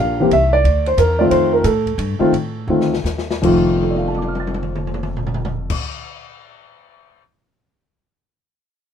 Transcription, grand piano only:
0.00 0.15 F3 medium
0.00 0.15 A#3 medium
0.00 0.15 D4 medium
0.00 0.16 G4 medium
0.00 0.32 F5 medium
0.20 0.30 E3 medium
0.20 0.31 A#3 medium
0.20 0.31 C4 medium
0.20 0.31 G4 medium
0.33 0.52 E5 medium
0.53 0.87 D5 loud
0.87 0.98 C5 medium
0.99 1.18 A#4 medium
1.19 1.62 D#3 medium
1.19 1.62 A3 medium
1.19 1.62 C4 medium
1.19 1.63 F4 medium
1.19 1.24 D5 medium
1.31 1.53 C5 medium
1.53 1.65 A#4 medium
1.65 3.01 A4 medium
2.19 2.31 D#3 medium
2.19 2.31 A3 medium
2.19 2.31 C4 medium
2.19 2.31 F4 medium
2.69 2.89 D#3 medium
2.69 2.89 A3 medium
2.69 2.90 C4 medium
2.69 2.90 F4 medium
3.42 5.75 F2 medium
3.42 5.75 D#3 medium
3.42 5.76 A3 medium
3.42 5.72 F4 medium
3.82 5.71 A4 soft
3.91 5.76 D5 soft
3.98 5.79 F5 soft
4.08 5.84 A5 soft
4.18 5.89 D6 soft
4.28 5.94 F6 soft
4.40 6.00 A6 soft

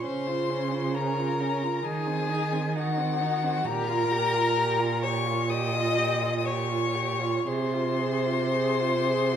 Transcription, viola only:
0.04 0.29 C#4 medium
0.27 0.51 F4 medium
0.50 0.73 C#4 medium
0.72 0.94 F4 medium
0.95 1.19 C#4 medium
1.18 1.42 F4 medium
1.40 1.65 C#4 medium
1.63 1.84 F4 medium
1.85 2.08 D#4 medium
2.07 2.31 C4 medium
2.29 2.54 D#4 medium
2.53 2.74 C4 medium
2.75 2.99 D#4 medium
2.97 3.22 C4 medium
3.21 3.45 D#4 medium
3.44 3.65 C4 medium
3.66 3.90 G4 medium
3.88 4.13 F4 medium
4.11 4.36 G4 medium
4.35 4.58 F4 medium
4.58 4.81 G4 medium
4.79 5.05 F4 medium
5.04 5.28 G4 medium
5.26 5.50 F4 medium
5.51 5.75 G4 medium
5.74 5.99 F4 medium
5.98 6.23 G4 medium
6.21 6.45 F4 medium
6.45 6.71 G4 medium
6.69 6.97 F4 medium
6.95 7.21 G4 medium
7.20 7.46 F4 medium
7.47 7.75 G#4 medium
7.73 8.01 F4 medium
8.00 8.28 G#4 medium
8.26 8.53 F4 medium
8.53 8.81 G#4 medium
8.80 9.08 F4 medium
9.07 9.34 G#4 medium
9.32 9.36 F4 medium

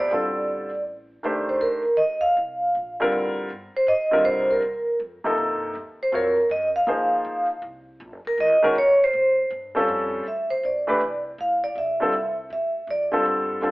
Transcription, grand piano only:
0.11 0.69 D3 soft
0.11 0.69 G3 medium
0.11 0.69 C4 medium
0.11 0.69 F4 medium
0.11 0.70 A4 medium
1.23 1.81 D#3 medium
1.23 1.82 A3 medium
1.23 1.82 D4 medium
1.23 1.82 G4 medium
1.23 1.82 C5 medium
3.00 3.48 D3 medium
3.00 3.48 G3 medium
3.00 3.48 C4 medium
3.00 3.48 F4 medium
3.00 3.48 A#4 medium
4.11 4.59 D3 medium
4.11 4.60 G3 medium
4.11 4.60 C4 medium
4.11 4.60 F4 medium
4.11 4.61 A#4 medium
5.24 5.72 C3 medium
5.24 5.72 F3 medium
5.24 5.73 A#3 medium
5.24 5.73 D#4 medium
5.24 5.73 A4 medium
6.12 6.35 F#3 medium
6.12 6.35 C4 soft
6.12 6.35 F4 medium
6.12 6.36 A#4 soft
6.12 6.36 C#5 medium
6.87 7.45 F3 medium
6.87 7.45 A#3 soft
6.87 7.45 D#4 soft
6.87 7.45 G#4 medium
6.87 7.46 C5 medium
8.62 8.74 D#3 medium
8.62 8.74 G#3 medium
8.62 8.75 C#4 medium
8.62 8.75 F#4 medium
8.62 8.75 A#4 medium
9.75 10.23 G3 medium
9.75 10.23 C4 medium
9.75 10.23 C#4 medium
9.75 10.24 F4 medium
9.75 10.24 A4 medium
10.87 10.99 E3 medium
10.87 10.99 A3 medium
10.87 10.99 D4 medium
10.87 11.00 G4 medium
10.87 11.00 B4 medium
12.00 12.12 D3 medium
12.00 12.12 G3 medium
12.00 12.12 C4 medium
12.00 12.13 F4 medium
12.00 12.13 A4 medium
13.12 13.60 D3 medium
13.12 13.60 G3 medium
13.12 13.61 C4 medium
13.12 13.61 F4 medium
13.12 13.61 A4 medium
13.62 13.71 D3 medium
13.62 13.71 G3 medium
13.62 13.71 C4 medium
13.62 13.71 F4 medium
13.62 13.71 A4 medium

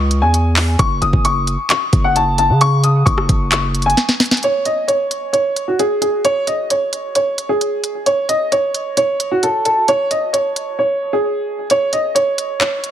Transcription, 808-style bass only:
0.00 0.24 C#2 loud
0.22 0.76 E2 loud
0.79 1.01 F#1 loud
1.02 1.13 F#1 loud
1.13 1.57 F#1 loud
1.93 2.51 F#1 loud
2.50 3.04 C#3 loud
3.06 3.28 F#1 loud
3.29 3.95 F#1 loud

